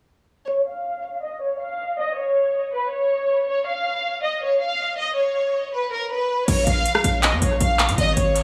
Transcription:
0.48 C#5
0.67 F5
1.23 D#5
1.42 C#5
1.60 F5
1.99 D#5
2.17 C#5
2.74 B4
2.92 C#5
3.48 C#5
3.67 F5
4.23 D#5
4.42 C#5
4.61 F5
4.98 D#5
5.17 C#5
5.74 B4
5.92 A#4
6.11 B4
6.48 A#1 C#5, closed hi-hat, crash
6.67 A#1 F5, closed hi-hat
6.86 closed hi-hat
6.95 cross-stick
7.04 A#1, closed hi-hat
7.23 D#5, clap, closed hi-hat
7.33 F2
7.42 A#1 C#5, closed hi-hat
7.60 A#1 F5, closed hi-hat
7.79 clap, closed hi-hat
7.89 A#2, closed hi-hat
7.98 G#1 D#5, closed hi-hat
8.16 G#1 C#5, closed hi-hat
8.36 closed hi-hat

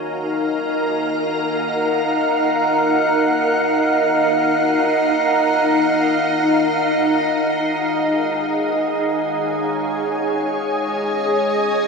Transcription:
Already playing: D#4 F#4 A#4 C#5 F5 G#5 A#5
1.06 F#5
7.36 G#4
9.24 C#5
10.18 D#5

